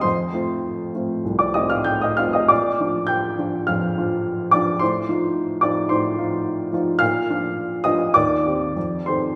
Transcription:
\new Staff \with { instrumentName = "Upright piano" } { \time 4/4 \key bes \major \tempo 4 = 104 << { <c'' c'''>2~ <c'' c'''>16 <d'' d'''>16 <ees'' ees'''>16 <f'' f'''>16 <g'' g'''>16 <ees'' ees'''>16 <f'' f'''>16 <ees'' ees'''>16 | <d'' d'''>4 <g'' g'''>4 <f'' f'''>4. <d'' d'''>8 | <c'' c'''>4. <d'' d'''>8 <c'' c'''>4. r8 | <f'' f'''>4. <ees'' ees'''>8 <d'' d'''>4. <c'' c'''>8 | } \\ { f,8 <a c' f'>4 <a c' f'>8 c,8 <a c' f'>4 <a c' f'>8 | bes,8 <f d' f'>4 <f d' f'>8 f,8 <f d' f'>4 <f d' f'>8 | a,8 <f ees' f'>4 <f ees' f'>8 a,8 <f ees' f'>4 <f ees' f'>8 | bes,8 <f d' f'>4 <f d' f'>8 ees,8 <ees c' g'>8 f,8 <ees c' a'>8 | } >> }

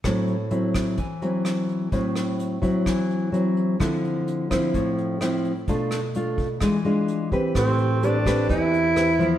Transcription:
<<
  \new Staff \with { instrumentName = "Tenor saxophone" } { \time 4/4 \key a \minor \tempo 4 = 128 r1 | r1 | r1 | r1 |
c'4 d'4 e'2 | }
  \new Staff \with { instrumentName = "Nylon-string guitar" } { \time 4/4 \key a \minor << { <fis c' e'>8 r8 <fis c' e'>4 r8 <fis c' e'>4. | <fis c' e'>4. <fis c' e'>4. <fis c' e'>4 | <f c' e'>4. <f c' e'>4. <f c' e'>8 r8 | <a d' f'>8 r8 <a d' f'>8 r8 <gis d' f'>8 <gis d' f'>4 <c' g' b'>8~ |
<c' g' b'>4 <c' g' b'>8 <c' g' b'>4. <c' g' b'>8 <f b e'>8 | } \\ { a,2 e2 | a,2 e2 | d2 a,2 | b,2 e2 |
a2 e2 | } >> }
  \new Staff \with { instrumentName = "Upright bass" } { \clef bass \time 4/4 \key a \minor r1 | r1 | r1 | r1 |
a,,2 e,2 | }
  \new DrumStaff \with { instrumentName = "Drums" } \drummode { \time 4/4 <hh bd ss>8 hh8 hh8 <hh bd ss>8 <hh bd>8 hh8 <hh ss>8 hh8 | <hh bd>8 <hh ss>8 hh8 <hh bd>8 <hh bd ss>8 hh8 hh8 hh8 | <hh bd ss>8 hh8 hh8 <hh bd ss>8 <hh bd>8 hh8 <hh ss>8 hh8 | <hh bd>8 <hh ss>8 hh8 <hh bd>8 <hh bd ss>8 hh8 hh8 <hh bd>8 |
<hh bd ss>8 hh8 hh8 <hh bd ss>8 <hh bd>8 hh8 <hh ss>8 hh8 | }
>>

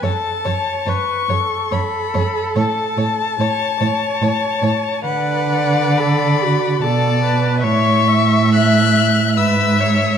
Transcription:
<<
  \new Staff \with { instrumentName = "Violin" } { \time 3/4 \key a \major \tempo 4 = 72 a''4 cis'''4 b''4 | a''2. | fis''4 b''4 a''4 | cis'''4 fis'''4 e'''4 | }
  \new Staff \with { instrumentName = "Violin" } { \time 3/4 \key a \major cis''8 cis''8 cis''8 cis''8 cis''8 cis''8 | cis''8 cis''8 cis''8 cis''8 cis''8 cis''8 | d''2 d''4 | e''2 e''4 | }
  \new Staff \with { instrumentName = "Viola" } { \time 3/4 \key a \major a'8 cis''8 b'8 a'4.~ | a'4 cis''8 cis''4. | b'4 a'8 fis'8 a'8 b'8 | cis''8 e''4. b'8 cis''8 | }
  \new Staff \with { instrumentName = "Cello" } { \clef bass \time 3/4 \key a \major fis,8 fis,8 fis,8 fis,8 fis,8 fis,8 | a,8 a,8 a,8 a,8 a,8 a,8 | d2 b,4 | a,2 gis,4 | }
>>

